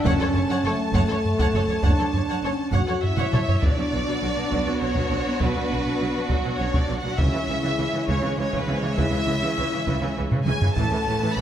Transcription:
0.03 F#1 F#2 C#4 C#5 F#5 A5, taiko
0.18 F#2 A4 C#5
0.33 F#1 F#2 C#5, taiko low
0.48 F#2 C#5 F#5
0.63 F#1 F#2 A4 C#5
0.67 A3
0.93 F#1 F#2 C#5 F#5, taiko
1.09 F#2 A4 C#5
1.25 taiko low
1.38 F#2 C#5 F#5, taiko
1.53 F#1 F#2 A4 C#5
1.67 F#2 C#5, taiko low
1.82 F#1 F#2 D4 C#5 F#5, taiko
1.98 F#2 A4 C#5
2.13 F#1 F#2 C#5, taiko low
2.28 F#2 C#5 F#5
2.43 F#1 F#2 C#4 A4 C#5
2.72 F#1 F#2 C#5 F#5, taiko
2.76 F#4
2.86 F#2 A4 C#5
3.03 E4 E5, taiko low
3.17 F#2 C#5 F#5, taiko low-mid
3.32 F#1 F#2 A4 C#5, taiko low-mid
3.46 F#2 C#5, taiko low
3.61 B1 B2 F#3 B3 D4 F#4 D5, taiko
3.78 B2 F#3
3.92 B1 B2 F#3
4.06 B2 F#3
4.22 B1 B2 F#3
4.37 B2 F#3
4.52 B1 B2 F#3, taiko
4.67 B2 F#3
4.81 B1 B2 F#3 C#5
4.96 B2 F#3, taiko
5.11 B1 B2 F#3
5.26 B2 F#3
5.40 B1 B2 F#3 B3 B4, taiko
5.57 B2 F#3
5.71 B1 B2 F#3
5.85 B2 F#3
6.00 B1 B2 F#3
6.15 B2 F#3
6.29 B1 B2 F#3 F#4, taiko
6.44 B2 F#3
6.59 B1 B2 F#3 C#4 C#5
6.73 B2 F#3, taiko
6.79 D4 D5
6.88 B1 B2 F#3
6.98 F#4 F#5
7.03 B2 F#3
7.18 C#2 C#3 E3 G#3 C#4 E4 E5, taiko
7.32 C#3 E3
7.49 C#2 C#3 E3
7.63 C#3 E3
7.77 C#2 C#3 E3
7.92 C#3 E3
8.07 C#2 C#3 E3 C#5, taiko
8.11 C#4
8.22 C#3 E3
8.37 C#2 C#3 E3 C#4 C#5
8.51 C#3 E3, taiko
8.58 B3 B4
8.67 C#2 C#3 E3
8.78 C#3 C#4 C#5
8.83 E3
8.96 C#2 C#3 E3 E4 E5, taiko
9.11 C#3 E3
9.26 C#2 C#3 E3
9.41 C#3 E3
9.57 C#2 C#3 E3
9.72 C#3 E3
9.87 C#2 C#3 E3, taiko
10.01 C#3 E3
10.17 C#2 C#3 E3
10.31 C#3 E3, taiko low-mid
10.46 C#2 C#3 E3 G#4 G#5, taiko mid
10.61 C#3 E3, taiko low
10.74 A1 A2 E3 A3 B3 C#4 A5, taiko
10.78 A4
10.91 A2 E3
11.06 A1 A2 E3
11.21 A2 E3
11.35 A1 A2 B4 B5

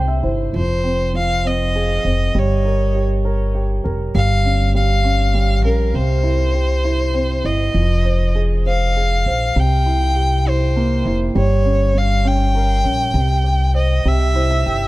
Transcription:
Already playing: C2 C3 G4 G5
0.08 E5
0.23 G1 E4 C5
0.53 F1 F3 C5
0.84 C4
1.14 F3 F5
1.45 C4 D#5
1.76 G#4
2.05 F1 C4
2.35 G1 G3
2.39 C#5
2.65 A#4
2.95 G4
3.25 A#4
3.55 G4
3.84 F1 A#4
4.15 G1 G3 F5
4.45 C#4
4.75 G3 F5
5.04 C#4
5.34 G3
5.64 A#1 C#4 A#4
5.94 C2 C3 C5
6.23 E4
6.54 G4
6.85 E4
7.14 C4
7.44 G1 E4 D#5
7.74 F1 F3
8.05 C5
8.35 G#4
8.66 C5 F5
8.97 G#4
9.26 A#1 C5
9.56 C2 C3 G5
9.86 E4
10.16 G4
10.46 E4 C5
10.76 A#3
11.05 F1 E4
11.35 G1 G3 C#5
11.65 C#4
11.95 G3 F5
12.25 C#4 G5
12.55 A#4
12.84 A#1 C#4
13.14 C2 C3
13.44 G4
13.74 C5 D#5
14.05 C2 C3 E5
14.35 E4 C5
14.51 E5
14.66 G1 G4 G5

